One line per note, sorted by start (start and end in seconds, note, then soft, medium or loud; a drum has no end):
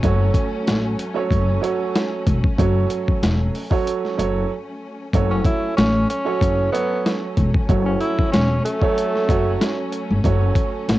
0.00 0.29 F#1 loud
0.00 5.10 F#3 medium
0.00 1.07 F#3 medium
0.00 5.10 A3 medium
0.00 5.10 C#4 medium
0.00 1.07 F#4 medium
0.00 kick loud
0.00 closed hi-hat medium
0.04 1.07 A4 medium
0.04 1.07 C#5 loud
0.34 kick medium
0.34 closed hi-hat medium
0.67 0.93 A1 loud
0.67 snare loud
0.67 closed hi-hat medium
0.99 closed hi-hat medium
1.14 1.58 F#3 medium
1.14 1.58 F#4 medium
1.14 1.58 A4 medium
1.14 1.59 C#5 loud
1.31 1.56 F#1 medium
1.31 kick loud
1.31 closed hi-hat medium
1.61 2.36 F#3 loud
1.61 2.37 F#4 medium
1.61 2.37 A4 medium
1.61 2.37 C#5 loud
1.61 closed hi-hat medium
1.96 snare loud
1.96 closed hi-hat medium
2.27 2.41 E1 medium
2.27 kick loud
2.27 closed hi-hat medium
2.44 kick loud
2.58 2.84 F#1 loud
2.58 3.62 F#3 loud
2.58 3.62 F#4 medium
2.58 3.62 A4 medium
2.58 3.62 C#5 loud
2.58 kick loud
2.58 closed hi-hat medium
2.90 closed hi-hat medium
3.08 kick medium
3.23 3.48 E1 loud
3.23 snare loud
3.23 closed hi-hat medium
3.55 open hi-hat medium
3.70 4.14 F#3 loud
3.70 4.14 F#4 medium
3.70 4.14 A4 medium
3.70 4.14 C#5 loud
3.70 kick loud
3.87 closed hi-hat medium
4.05 snare soft
4.17 4.44 F#1 medium
4.17 4.50 F#3 medium
4.17 4.50 F#4 medium
4.17 4.50 A4 medium
4.17 4.50 C#5 loud
4.17 closed hi-hat medium
5.14 5.39 F#1 loud
5.14 6.17 F#3 medium
5.14 10.99 F#3 medium
5.14 10.99 A3 medium
5.14 10.99 C#4 medium
5.14 6.17 F#4 medium
5.14 6.18 A4 medium
5.14 6.18 C#5 loud
5.14 kick loud
5.14 closed hi-hat medium
5.31 5.44 C#4 medium
5.45 5.74 E4 medium
5.45 kick medium
5.45 closed hi-hat medium
5.77 6.03 A1 loud
5.77 6.06 C#4 medium
5.77 snare loud
5.77 closed hi-hat medium
6.10 6.70 C#4 medium
6.10 closed hi-hat medium
6.25 6.69 F#3 medium
6.25 6.69 F#4 medium
6.25 6.69 A4 medium
6.25 6.69 C#5 loud
6.41 6.67 F#1 medium
6.41 kick loud
6.41 closed hi-hat medium
6.72 7.47 F#3 loud
6.72 7.19 B3 medium
6.72 7.47 F#4 medium
6.72 7.47 A4 medium
6.72 7.48 C#5 loud
6.72 closed hi-hat medium
7.06 snare loud
7.06 closed hi-hat medium
7.37 7.51 E1 medium
7.37 kick loud
7.37 closed hi-hat medium
7.54 kick loud
7.69 7.94 F#1 loud
7.69 8.72 F#3 loud
7.69 8.73 F#4 medium
7.69 8.73 A4 medium
7.69 8.73 C#5 loud
7.69 kick loud
7.69 closed hi-hat loud
7.86 7.99 C#4 medium
8.01 8.29 E4 medium
8.01 closed hi-hat medium
8.19 kick medium
8.32 8.58 E1 medium
8.32 8.61 C#4 medium
8.32 snare loud
8.32 closed hi-hat medium
8.65 9.74 A3 medium
8.65 closed hi-hat medium
8.81 9.24 F#3 loud
8.81 9.25 F#4 medium
8.81 9.25 A4 medium
8.81 9.25 C#5 loud
8.81 kick loud
8.98 closed hi-hat medium
9.15 snare soft
9.28 9.54 F#1 medium
9.28 10.17 F#3 medium
9.28 10.17 F#4 medium
9.28 10.18 A4 medium
9.28 10.18 C#5 loud
9.28 kick loud
9.28 closed hi-hat medium
9.61 snare loud
9.61 closed hi-hat medium
9.92 closed hi-hat medium
10.10 10.22 G1 medium
10.24 10.50 F#1 loud
10.24 10.99 F#3 medium
10.24 10.99 F#4 medium
10.24 10.99 A4 medium
10.24 10.99 C#5 loud
10.24 kick loud
10.24 closed hi-hat loud
10.55 kick medium
10.55 closed hi-hat medium
10.88 10.99 A1 loud
10.88 snare loud
10.88 closed hi-hat medium